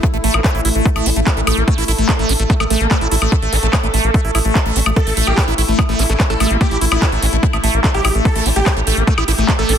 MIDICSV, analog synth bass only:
0, 0, Header, 1, 2, 480
1, 0, Start_track
1, 0, Tempo, 410959
1, 39, Time_signature, 4, 2, 24, 8
1, 11424, End_track
2, 0, Start_track
2, 0, Title_t, "Analog synth bass"
2, 0, Program_c, 0, 38
2, 159, Note_on_c, 0, 33, 90
2, 228, Note_off_c, 0, 33, 0
2, 279, Note_on_c, 0, 33, 95
2, 348, Note_off_c, 0, 33, 0
2, 399, Note_on_c, 0, 33, 90
2, 468, Note_off_c, 0, 33, 0
2, 639, Note_on_c, 0, 33, 90
2, 708, Note_off_c, 0, 33, 0
2, 758, Note_on_c, 0, 33, 102
2, 828, Note_off_c, 0, 33, 0
2, 879, Note_on_c, 0, 33, 90
2, 948, Note_off_c, 0, 33, 0
2, 1119, Note_on_c, 0, 33, 87
2, 1188, Note_off_c, 0, 33, 0
2, 1239, Note_on_c, 0, 33, 99
2, 1308, Note_off_c, 0, 33, 0
2, 1359, Note_on_c, 0, 33, 98
2, 1428, Note_off_c, 0, 33, 0
2, 1599, Note_on_c, 0, 33, 89
2, 1668, Note_off_c, 0, 33, 0
2, 1719, Note_on_c, 0, 33, 104
2, 1788, Note_off_c, 0, 33, 0
2, 1839, Note_on_c, 0, 33, 95
2, 1908, Note_off_c, 0, 33, 0
2, 2079, Note_on_c, 0, 33, 92
2, 2148, Note_off_c, 0, 33, 0
2, 2198, Note_on_c, 0, 33, 96
2, 2268, Note_off_c, 0, 33, 0
2, 2319, Note_on_c, 0, 33, 90
2, 2388, Note_off_c, 0, 33, 0
2, 2559, Note_on_c, 0, 33, 89
2, 2628, Note_off_c, 0, 33, 0
2, 2679, Note_on_c, 0, 33, 102
2, 2748, Note_off_c, 0, 33, 0
2, 2798, Note_on_c, 0, 33, 86
2, 2867, Note_off_c, 0, 33, 0
2, 3038, Note_on_c, 0, 33, 88
2, 3107, Note_off_c, 0, 33, 0
2, 3159, Note_on_c, 0, 33, 98
2, 3228, Note_off_c, 0, 33, 0
2, 3279, Note_on_c, 0, 33, 96
2, 3348, Note_off_c, 0, 33, 0
2, 3519, Note_on_c, 0, 33, 92
2, 3588, Note_off_c, 0, 33, 0
2, 3639, Note_on_c, 0, 33, 100
2, 3708, Note_off_c, 0, 33, 0
2, 3759, Note_on_c, 0, 33, 91
2, 3828, Note_off_c, 0, 33, 0
2, 3999, Note_on_c, 0, 33, 94
2, 4068, Note_off_c, 0, 33, 0
2, 4119, Note_on_c, 0, 33, 94
2, 4188, Note_off_c, 0, 33, 0
2, 4239, Note_on_c, 0, 33, 91
2, 4308, Note_off_c, 0, 33, 0
2, 4479, Note_on_c, 0, 33, 89
2, 4548, Note_off_c, 0, 33, 0
2, 4599, Note_on_c, 0, 33, 97
2, 4668, Note_off_c, 0, 33, 0
2, 4719, Note_on_c, 0, 33, 89
2, 4788, Note_off_c, 0, 33, 0
2, 4959, Note_on_c, 0, 33, 87
2, 5028, Note_off_c, 0, 33, 0
2, 5079, Note_on_c, 0, 33, 97
2, 5148, Note_off_c, 0, 33, 0
2, 5199, Note_on_c, 0, 33, 93
2, 5268, Note_off_c, 0, 33, 0
2, 5439, Note_on_c, 0, 33, 89
2, 5508, Note_off_c, 0, 33, 0
2, 5559, Note_on_c, 0, 33, 101
2, 5628, Note_off_c, 0, 33, 0
2, 5679, Note_on_c, 0, 33, 91
2, 5748, Note_off_c, 0, 33, 0
2, 5919, Note_on_c, 0, 33, 91
2, 5988, Note_off_c, 0, 33, 0
2, 6039, Note_on_c, 0, 33, 97
2, 6108, Note_off_c, 0, 33, 0
2, 6159, Note_on_c, 0, 33, 93
2, 6228, Note_off_c, 0, 33, 0
2, 6399, Note_on_c, 0, 33, 93
2, 6468, Note_off_c, 0, 33, 0
2, 6519, Note_on_c, 0, 33, 99
2, 6588, Note_off_c, 0, 33, 0
2, 6638, Note_on_c, 0, 33, 84
2, 6707, Note_off_c, 0, 33, 0
2, 6879, Note_on_c, 0, 33, 91
2, 6948, Note_off_c, 0, 33, 0
2, 6999, Note_on_c, 0, 33, 104
2, 7068, Note_off_c, 0, 33, 0
2, 7119, Note_on_c, 0, 33, 93
2, 7188, Note_off_c, 0, 33, 0
2, 7359, Note_on_c, 0, 33, 87
2, 7428, Note_off_c, 0, 33, 0
2, 7479, Note_on_c, 0, 33, 104
2, 7548, Note_off_c, 0, 33, 0
2, 7599, Note_on_c, 0, 33, 93
2, 7668, Note_off_c, 0, 33, 0
2, 7839, Note_on_c, 0, 33, 92
2, 7908, Note_off_c, 0, 33, 0
2, 7959, Note_on_c, 0, 33, 98
2, 8028, Note_off_c, 0, 33, 0
2, 8079, Note_on_c, 0, 33, 93
2, 8148, Note_off_c, 0, 33, 0
2, 8319, Note_on_c, 0, 33, 86
2, 8388, Note_off_c, 0, 33, 0
2, 8439, Note_on_c, 0, 33, 103
2, 8508, Note_off_c, 0, 33, 0
2, 8559, Note_on_c, 0, 33, 94
2, 8628, Note_off_c, 0, 33, 0
2, 8799, Note_on_c, 0, 33, 88
2, 8868, Note_off_c, 0, 33, 0
2, 8920, Note_on_c, 0, 33, 101
2, 8988, Note_off_c, 0, 33, 0
2, 9039, Note_on_c, 0, 33, 88
2, 9108, Note_off_c, 0, 33, 0
2, 9279, Note_on_c, 0, 33, 87
2, 9348, Note_off_c, 0, 33, 0
2, 9399, Note_on_c, 0, 33, 97
2, 9468, Note_off_c, 0, 33, 0
2, 9519, Note_on_c, 0, 33, 91
2, 9588, Note_off_c, 0, 33, 0
2, 9759, Note_on_c, 0, 33, 92
2, 9828, Note_off_c, 0, 33, 0
2, 9879, Note_on_c, 0, 33, 94
2, 9948, Note_off_c, 0, 33, 0
2, 9999, Note_on_c, 0, 33, 92
2, 10068, Note_off_c, 0, 33, 0
2, 10239, Note_on_c, 0, 33, 90
2, 10308, Note_off_c, 0, 33, 0
2, 10359, Note_on_c, 0, 33, 97
2, 10428, Note_off_c, 0, 33, 0
2, 10479, Note_on_c, 0, 33, 92
2, 10548, Note_off_c, 0, 33, 0
2, 10719, Note_on_c, 0, 33, 89
2, 10788, Note_off_c, 0, 33, 0
2, 10839, Note_on_c, 0, 33, 97
2, 10908, Note_off_c, 0, 33, 0
2, 10959, Note_on_c, 0, 33, 94
2, 11028, Note_off_c, 0, 33, 0
2, 11199, Note_on_c, 0, 33, 91
2, 11268, Note_off_c, 0, 33, 0
2, 11319, Note_on_c, 0, 33, 98
2, 11388, Note_off_c, 0, 33, 0
2, 11424, End_track
0, 0, End_of_file